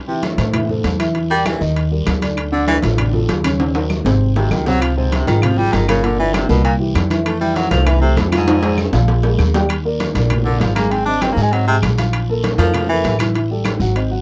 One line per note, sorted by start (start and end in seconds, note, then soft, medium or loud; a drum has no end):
0.07 0.25 C3 medium
0.07 0.33 E3 medium
0.07 0.33 E4 medium
0.07 0.33 E5 medium
0.07 high conga soft
0.23 0.39 A2 medium
0.23 high conga medium
0.23 high timbale medium
0.23 low timbale medium
0.23 short guiro medium
0.38 0.81 A2 medium
0.38 0.51 A3 medium
0.38 0.51 A4 medium
0.38 0.51 C5 medium
0.38 high conga medium
0.38 high timbale medium
0.38 short guiro medium
0.53 0.66 E3 medium
0.53 0.66 E4 medium
0.53 0.66 E5 medium
0.53 high conga soft
0.53 low conga medium
0.53 high timbale medium
0.53 long guiro medium
0.53 claves medium
0.69 0.94 A3 medium
0.69 0.94 A4 medium
0.69 0.94 C5 medium
0.69 high conga soft
0.69 low conga medium
0.84 1.55 E2 medium
0.84 high conga medium
0.84 high timbale medium
0.84 low timbale medium
0.84 short guiro medium
0.99 1.12 E3 medium
0.99 1.12 E4 medium
0.99 1.12 E5 medium
0.99 high conga medium
0.99 high timbale medium
0.99 short guiro medium
0.99 claves medium
1.15 1.27 E3 medium
1.15 1.27 E4 medium
1.15 1.28 E5 medium
1.15 high conga soft
1.15 high timbale medium
1.15 long guiro medium
1.30 1.55 G3 medium
1.30 1.48 G3 loud
1.30 1.56 G4 medium
1.30 1.55 A#4 medium
1.30 high conga soft
1.46 1.61 E3 medium
1.46 high conga medium
1.46 high timbale medium
1.46 low timbale medium
1.46 short guiro medium
1.46 claves medium
1.61 2.03 D#2 medium
1.61 1.86 D#3 medium
1.61 1.86 D#4 medium
1.61 1.86 D#5 medium
1.61 high conga soft
1.61 short guiro medium
1.76 high conga soft
1.76 high timbale medium
1.76 long guiro medium
1.91 2.16 G3 medium
1.91 2.16 G4 medium
1.91 2.17 A#4 medium
1.91 high conga soft
2.06 2.77 D2 medium
2.06 high conga medium
2.06 high timbale medium
2.06 low timbale medium
2.06 short guiro medium
2.06 claves medium
2.22 2.47 D3 medium
2.22 2.47 D4 medium
2.22 2.47 D5 medium
2.22 high conga medium
2.22 high timbale medium
2.22 short guiro medium
2.37 high conga soft
2.37 high timbale medium
2.37 long guiro medium
2.37 claves medium
2.52 2.77 D3 medium
2.52 2.67 D3 medium
2.52 2.77 D4 medium
2.52 2.78 D5 medium
2.52 high conga soft
2.67 2.77 E3 medium
2.67 high conga medium
2.67 high timbale medium
2.67 low timbale medium
2.67 short guiro medium
2.82 3.26 A1 loud
2.82 2.96 F3 medium
2.82 2.96 F4 medium
2.82 2.96 A4 medium
2.82 high conga medium
2.82 high timbale medium
2.82 short guiro medium
2.98 3.11 D3 medium
2.98 3.11 D4 medium
2.98 3.11 D5 medium
2.98 high conga soft
2.98 low conga medium
2.98 high timbale medium
2.98 long guiro medium
2.98 claves medium
3.13 3.38 F3 medium
3.13 3.39 F4 medium
3.13 3.39 A4 medium
3.13 high conga soft
3.13 low conga medium
3.29 4.00 D#2 medium
3.29 high conga medium
3.29 high timbale medium
3.29 low timbale medium
3.29 short guiro medium
3.44 3.57 C#3 medium
3.44 3.57 C#4 medium
3.44 3.57 C#5 medium
3.44 high conga medium
3.44 high timbale loud
3.44 short guiro medium
3.44 claves medium
3.59 3.72 C#3 medium
3.59 3.72 C#4 medium
3.59 3.72 C#5 medium
3.59 high conga soft
3.59 high timbale medium
3.59 long guiro medium
3.75 4.00 F#3 medium
3.75 4.00 F#4 medium
3.75 4.00 A#4 medium
3.75 high conga soft
3.75 high timbale medium
3.90 high conga medium
3.90 short guiro medium
3.90 claves medium
4.05 4.47 G#1 medium
4.05 4.30 C3 medium
4.05 4.30 C4 medium
4.05 4.31 C5 medium
4.05 high conga soft
4.05 low timbale medium
4.05 short guiro medium
4.21 high conga soft
4.21 long guiro medium
4.36 4.53 C3 medium
4.36 4.61 D#3 medium
4.36 4.61 F#4 medium
4.36 high conga soft
4.36 low timbale medium
4.51 5.22 C#2 medium
4.51 4.68 D#3 medium
4.51 high conga medium
4.51 low timbale medium
4.51 short guiro medium
4.51 claves medium
4.66 4.92 C3 medium
4.66 4.83 F#3 loud
4.66 4.92 C4 medium
4.66 4.92 C5 medium
4.66 high conga medium
4.66 low timbale medium
4.66 short guiro medium
4.82 4.96 F3 medium
4.82 high conga soft
4.82 high timbale medium
4.82 long guiro medium
4.82 claves medium
4.97 5.14 G#2 medium
4.97 5.22 C3 medium
4.97 5.22 C4 medium
4.97 5.22 C5 medium
4.97 high conga soft
5.12 5.26 C3 medium
5.12 high conga medium
5.12 high timbale medium
5.12 low timbale medium
5.12 short guiro medium
5.27 5.70 G#1 medium
5.27 5.43 D#3 medium
5.27 5.40 F3 medium
5.27 5.41 F4 medium
5.27 5.40 G#4 medium
5.27 high conga medium
5.27 high timbale medium
5.27 short guiro medium
5.42 5.55 C3 medium
5.42 5.59 F3 medium
5.42 5.56 C4 medium
5.42 5.56 C5 medium
5.42 high conga soft
5.42 low conga medium
5.42 high timbale medium
5.42 long guiro medium
5.42 claves medium
5.58 5.83 F3 medium
5.58 5.74 G3 loud
5.58 5.83 F4 medium
5.58 5.84 G#4 medium
5.58 high conga soft
5.73 6.44 G1 medium
5.73 5.88 D#3 medium
5.73 high conga medium
5.73 high timbale medium
5.73 low timbale medium
5.73 short guiro medium
5.88 6.01 A#2 medium
5.88 6.06 C#3 medium
5.88 6.01 A#3 medium
5.88 6.01 A#4 medium
5.88 high conga medium
5.88 high timbale loud
5.88 short guiro medium
5.88 claves medium
6.04 6.16 A#2 medium
6.04 6.18 D3 medium
6.04 6.16 A#3 medium
6.04 6.16 A#4 medium
6.04 high conga soft
6.04 high timbale medium
6.04 long guiro medium
6.18 6.44 D3 medium
6.18 6.36 E3 loud
6.18 6.44 D4 medium
6.18 6.44 F4 medium
6.18 high conga soft
6.34 6.48 C3 medium
6.34 high conga loud
6.34 high timbale medium
6.34 low timbale medium
6.34 short guiro medium
6.34 claves medium
6.49 6.92 C2 loud
6.49 6.74 A#2 medium
6.49 6.63 B2 medium
6.49 6.74 A#3 medium
6.49 6.74 A#4 medium
6.49 high conga soft
6.49 short guiro medium
6.64 6.73 A#2 medium
6.64 high conga soft
6.64 high timbale medium
6.64 long guiro medium
6.79 7.04 E3 medium
6.79 7.05 E4 medium
6.79 7.05 G4 medium
6.79 high conga soft
6.95 7.66 F2 medium
6.95 high conga medium
6.95 high timbale medium
6.95 low timbale medium
6.95 short guiro medium
6.95 claves medium
7.10 7.35 E3 medium
7.10 7.35 E4 medium
7.10 7.36 E5 medium
7.10 high conga medium
7.10 high timbale medium
7.10 short guiro medium
7.26 7.40 A3 medium
7.26 high conga soft
7.26 high timbale medium
7.26 long guiro medium
7.26 claves medium
7.41 7.66 E3 medium
7.41 7.57 G3 medium
7.41 7.66 E4 medium
7.41 7.66 E5 medium
7.41 high conga soft
7.56 7.70 F#3 loud
7.56 high conga medium
7.56 high timbale medium
7.56 low timbale medium
7.56 short guiro medium
7.71 8.14 C2 medium
7.71 7.87 F3 loud
7.71 7.84 A3 medium
7.71 7.84 A4 medium
7.71 7.84 C5 medium
7.71 high conga loud
7.71 high timbale medium
7.71 short guiro medium
7.86 8.01 E3 medium
7.86 7.99 E3 medium
7.86 8.00 E4 medium
7.86 8.00 E5 medium
7.86 high conga soft
7.86 low conga medium
7.86 high timbale medium
7.86 long guiro medium
7.86 claves medium
8.01 8.19 C3 medium
8.01 8.27 A3 medium
8.01 8.27 A4 medium
8.01 8.27 C5 medium
8.01 high conga soft
8.17 8.88 F2 medium
8.17 8.29 A2 medium
8.17 high conga medium
8.17 high timbale medium
8.17 low timbale medium
8.17 short guiro medium
8.28 8.36 F2 medium
8.32 8.45 F3 medium
8.32 8.45 F4 medium
8.32 8.45 F5 medium
8.32 high conga medium
8.32 high timbale loud
8.32 short guiro medium
8.32 claves medium
8.37 9.09 G#2 medium
8.47 8.60 F3 medium
8.47 8.60 F4 medium
8.47 8.60 F5 medium
8.47 high conga soft
8.47 high timbale loud
8.47 long guiro medium
8.63 8.88 G#3 medium
8.63 8.88 G#4 medium
8.63 8.88 C5 medium
8.63 high conga soft
8.63 high timbale loud
8.78 high conga medium
8.78 short guiro medium
8.78 claves medium
8.93 9.35 A#1 loud
8.93 9.18 F3 medium
8.93 9.18 F4 medium
8.93 9.19 F5 loud
8.93 high conga soft
8.93 low timbale loud
8.93 short guiro medium
9.08 high conga soft
9.08 low timbale medium
9.08 long guiro medium
9.23 9.49 G#3 medium
9.23 9.49 G#4 medium
9.23 9.49 A#4 medium
9.23 high conga soft
9.23 low timbale medium
9.38 10.09 D#2 medium
9.38 high conga medium
9.38 low timbale medium
9.38 short guiro medium
9.38 claves medium
9.54 9.67 G3 loud
9.54 9.67 G4 medium
9.54 9.67 G5 medium
9.54 high conga medium
9.54 low timbale medium
9.54 short guiro medium
9.69 high conga soft
9.69 high timbale medium
9.69 long guiro medium
9.69 claves medium
9.85 10.10 A#3 medium
9.85 10.10 A#4 medium
9.85 10.10 D5 medium
9.85 high conga soft
10.00 high conga medium
10.00 high timbale medium
10.00 low timbale medium
10.00 short guiro medium
10.15 10.57 A#1 medium
10.15 10.40 A#3 medium
10.15 10.40 A#4 medium
10.15 10.40 D5 medium
10.15 high conga medium
10.15 high timbale medium
10.15 short guiro medium
10.30 high conga soft
10.30 low conga medium
10.30 high timbale medium
10.30 long guiro medium
10.30 claves medium
10.45 10.62 D3 medium
10.45 10.71 A#3 medium
10.45 10.71 A#4 medium
10.45 10.71 D5 medium
10.45 high conga soft
10.45 low conga medium
10.60 11.31 G#1 medium
10.60 10.74 F3 medium
10.60 high conga medium
10.60 high timbale medium
10.60 low timbale medium
10.60 short guiro medium
10.75 10.89 G#3 medium
10.75 10.92 A#3 medium
10.75 10.89 G#4 medium
10.75 10.89 G#5 medium
10.75 high conga medium
10.75 high timbale medium
10.75 short guiro medium
10.75 claves medium
10.91 11.04 G#3 medium
10.91 11.05 C4 medium
10.91 11.04 G#4 medium
10.91 11.04 G#5 medium
10.91 high conga soft
10.91 high timbale medium
10.91 long guiro medium
11.05 11.32 C4 medium
11.05 11.23 D4 loud
11.05 11.32 C5 medium
11.05 11.33 D#5 medium
11.05 high conga soft
11.22 11.34 C4 loud
11.22 high conga loud
11.22 high timbale medium
11.22 low timbale medium
11.22 short guiro medium
11.22 claves medium
11.32 11.44 A#3 medium
11.36 11.79 G#2 medium
11.36 11.49 G#3 medium
11.36 11.50 G#4 medium
11.36 11.50 G#5 medium
11.36 high conga soft
11.36 short guiro medium
11.42 11.53 G#3 medium
11.52 11.67 F#3 medium
11.52 11.65 C4 medium
11.52 11.65 C5 medium
11.52 11.65 D#5 medium
11.52 high conga soft
11.52 high timbale medium
11.52 long guiro medium
11.67 11.76 C3 loud
11.67 11.93 G#3 medium
11.67 11.93 G#4 medium
11.67 11.93 G#5 medium
11.67 high conga soft
11.82 12.53 A#1 medium
11.82 high conga medium
11.82 high timbale medium
11.82 low timbale medium
11.82 short guiro medium
11.82 claves medium
11.98 12.23 F3 medium
11.98 12.23 F4 medium
11.98 12.24 F5 medium
11.98 high conga medium
11.98 high timbale medium
11.98 short guiro medium
12.13 high conga soft
12.13 high timbale medium
12.13 long guiro medium
12.13 claves medium
12.29 12.54 A#3 medium
12.29 12.54 A4 medium
12.29 12.54 A#4 medium
12.29 high conga soft
12.43 high conga medium
12.43 high timbale medium
12.43 low timbale medium
12.43 short guiro medium
12.58 13.01 F2 medium
12.58 12.87 F3 medium
12.58 12.84 A#3 medium
12.58 12.84 A4 medium
12.58 12.84 A#4 medium
12.58 high conga medium
12.58 high timbale medium
12.58 short guiro medium
12.74 high conga soft
12.74 low conga medium
12.74 high timbale medium
12.74 long guiro medium
12.74 claves medium
12.89 13.17 E3 medium
12.89 13.14 A#3 medium
12.89 13.14 A4 medium
12.89 13.15 A#4 medium
12.89 high conga soft
13.04 13.75 A1 medium
13.04 high conga medium
13.04 high timbale medium
13.04 low timbale medium
13.04 short guiro medium
13.19 13.27 C3 soft
13.19 13.32 E3 medium
13.19 13.32 E4 medium
13.19 13.32 E5 medium
13.19 high conga medium
13.19 high timbale loud
13.19 short guiro medium
13.19 claves medium
13.35 13.47 E3 medium
13.35 13.48 E4 medium
13.35 13.48 E5 medium
13.35 high conga soft
13.35 high timbale medium
13.35 long guiro medium
13.50 13.75 G3 medium
13.50 13.76 G4 medium
13.50 13.76 A4 medium
13.50 high conga soft
13.65 high conga medium
13.65 high timbale medium
13.65 low timbale medium
13.65 short guiro medium
13.65 claves medium
13.80 14.21 G#1 medium
13.80 13.93 F#3 medium
13.80 13.93 F#4 medium
13.80 13.93 F#5 medium
13.80 high conga soft
13.80 short guiro medium
13.95 14.08 C4 medium
13.95 14.08 C5 medium
13.95 14.08 D#5 medium
13.95 high conga soft
13.95 high timbale medium
13.95 long guiro medium
14.10 14.21 F#3 medium
14.10 14.21 F#4 medium
14.10 14.21 F#5 medium
14.10 high conga soft